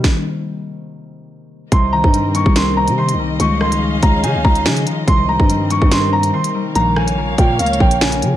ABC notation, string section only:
X:1
M:4/4
L:1/8
Q:1/4=143
K:Cphr
V:1 name="String section"
z8 | [CGBe]8 | [DAf]8 | [CGB]8 |
[B,df]8 |]